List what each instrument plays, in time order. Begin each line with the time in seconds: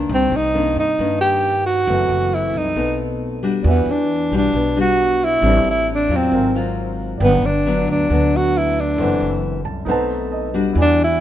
Already playing: nylon-string guitar D#3 A#3 D4
0.09 upright bass C2, nylon-string guitar C3
0.14 tenor saxophone C4
0.32 upright bass C2, tenor saxophone D#4
0.54 nylon-string guitar D#3 A#3 D4
0.76 upright bass G2, tenor saxophone D#4
0.99 upright bass G2, nylon-string guitar G2 D#3 A#3 D4
1.21 tenor saxophone G4
1.66 tenor saxophone F#4
1.87 upright bass F#1, nylon-string guitar F#2 E3 A3 C4
2.09 upright bass F#1
2.34 tenor saxophone E4
2.54 upright bass C2, tenor saxophone D#4
2.76 upright bass B1, nylon-string guitar B2 A3 C4 D#4
3.43 nylon-string guitar G3 D4 F#4
3.62 upright bass E2, nylon-string guitar E3, grand piano D4 F#4
3.68 tenor saxophone B3, grand piano E5
3.86 upright bass E2
3.91 tenor saxophone D4
4.31 upright bass B1, nylon-string guitar G3 D4 F#4
4.37 tenor saxophone D4
4.54 upright bass B1, nylon-string guitar B2
4.76 nylon-string guitar G3 D4 F#4
4.80 tenor saxophone F#4
5.24 tenor saxophone E4
5.40 upright bass A1, nylon-string guitar A2 G3 C4 D4, grand piano C4 G4 B4
5.46 grand piano D5
5.64 upright bass A1
5.70 tenor saxophone E4
5.94 tenor saxophone D4
6.09 upright bass E2, nylon-string guitar F#3 C4 F4
6.16 tenor saxophone C4
6.29 upright bass G#1, grand piano C4
6.33 nylon-string guitar G#2, grand piano A#4 F5
6.55 nylon-string guitar F#3 C4 F4
7.18 upright bass G1, nylon-string guitar G2, grand piano D4 G5
7.22 nylon-string guitar F#3 B3 D4, tenor saxophone B3, grand piano B4 F#5
7.42 upright bass G1, tenor saxophone D4
7.66 nylon-string guitar F#3 B3 D4
7.88 upright bass D2, tenor saxophone D4
8.10 upright bass D2, nylon-string guitar D3 F#3 B3 D4
8.36 tenor saxophone F#4
8.58 tenor saxophone E4
8.80 tenor saxophone D4
8.96 upright bass F#1, grand piano E4 A4 C5
9.00 nylon-string guitar F#2 E3 A3 C4, grand piano F#5
9.21 upright bass F#1
9.65 upright bass C2, grand piano A5
9.85 upright bass B1, nylon-string guitar B2 A3 C4, grand piano D#4 B4 C5 F#5
9.89 nylon-string guitar D#4, grand piano A5
10.32 grand piano D#5
10.54 nylon-string guitar G3 D4 F#4
10.73 upright bass E2, nylon-string guitar E3, grand piano E4
10.77 tenor saxophone D4, grand piano D5 F#5
11.04 tenor saxophone E4